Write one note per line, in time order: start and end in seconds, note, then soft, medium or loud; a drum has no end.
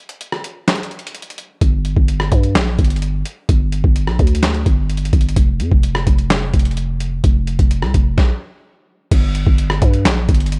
0.09 closed hi-hat medium
0.21 closed hi-hat medium
0.32 cross-stick loud
0.44 closed hi-hat medium
0.68 snare loud
0.68 clap medium
0.68 closed hi-hat soft
0.75 closed hi-hat medium
0.83 closed hi-hat medium
0.91 closed hi-hat soft
0.99 closed hi-hat medium
1.07 closed hi-hat medium
1.15 closed hi-hat medium
1.22 closed hi-hat medium
1.30 closed hi-hat medium
1.38 closed hi-hat medium
1.61 1.95 G1 loud
1.61 kick loud
1.61 closed hi-hat medium
1.85 closed hi-hat medium
1.97 2.30 G1 loud
1.97 kick loud
2.08 closed hi-hat medium
2.20 cross-stick loud
2.32 2.57 G2 loud
2.32 kick medium
2.32 closed hi-hat medium
2.43 closed hi-hat soft
2.55 2.77 A#1 loud
2.55 snare loud
2.55 clap loud
2.55 closed hi-hat medium
2.79 3.24 G1 loud
2.79 kick medium
2.79 closed hi-hat medium
2.85 closed hi-hat medium
2.90 closed hi-hat soft
2.96 closed hi-hat soft
3.02 closed hi-hat medium
3.25 closed hi-hat medium
3.49 3.83 G1 loud
3.49 kick loud
3.49 closed hi-hat medium
3.72 closed hi-hat medium
3.84 4.09 G1 loud
3.84 kick loud
3.96 closed hi-hat medium
4.07 4.19 A#1 loud
4.07 cross-stick loud
4.19 4.64 D2 loud
4.19 kick medium
4.19 closed hi-hat soft
4.27 closed hi-hat medium
4.35 closed hi-hat medium
4.43 snare loud
4.43 clap medium
4.43 closed hi-hat medium
4.54 closed hi-hat soft
4.66 5.11 G1 loud
4.66 kick medium
4.66 closed hi-hat medium
4.90 closed hi-hat medium
4.97 closed hi-hat medium
5.05 closed hi-hat medium
5.13 5.35 G1 loud
5.13 kick medium
5.13 closed hi-hat medium
5.21 closed hi-hat medium
5.29 closed hi-hat medium
5.36 5.61 F1 loud
5.36 kick loud
5.36 closed hi-hat medium
5.60 5.71 F2 loud
5.60 closed hi-hat medium
5.72 6.05 F1 loud
5.72 kick loud
5.83 closed hi-hat medium
5.95 cross-stick loud
6.07 6.52 F1 loud
6.07 kick medium
6.07 closed hi-hat medium
6.18 closed hi-hat soft
6.30 snare loud
6.30 clap loud
6.30 closed hi-hat medium
6.54 7.21 F1 loud
6.54 kick medium
6.54 closed hi-hat medium
6.59 closed hi-hat medium
6.65 closed hi-hat medium
6.71 closed hi-hat soft
6.77 closed hi-hat medium
7.00 closed hi-hat medium
7.24 7.58 F1 loud
7.24 kick loud
7.24 closed hi-hat medium
7.47 closed hi-hat medium
7.59 7.84 F1 loud
7.59 kick loud
7.59 closed hi-hat medium
7.71 closed hi-hat medium
7.82 7.94 C2 loud
7.82 cross-stick loud
7.94 8.17 F1 loud
7.94 kick medium
7.94 closed hi-hat medium
8.18 kick loud
8.18 snare medium
9.11 9.45 G1 loud
9.11 kick loud
9.11 closed hi-hat medium
9.11 crash loud
9.35 closed hi-hat medium
9.47 9.80 G1 loud
9.47 kick loud
9.58 closed hi-hat medium
9.70 cross-stick loud
9.82 10.07 G2 loud
9.82 kick medium
9.82 closed hi-hat medium
9.93 closed hi-hat soft
10.05 10.27 A#1 loud
10.05 snare loud
10.05 clap medium
10.05 closed hi-hat medium
10.29 10.59 G1 loud
10.29 kick medium
10.29 closed hi-hat medium
10.34 closed hi-hat medium
10.40 closed hi-hat medium
10.46 closed hi-hat soft
10.52 closed hi-hat medium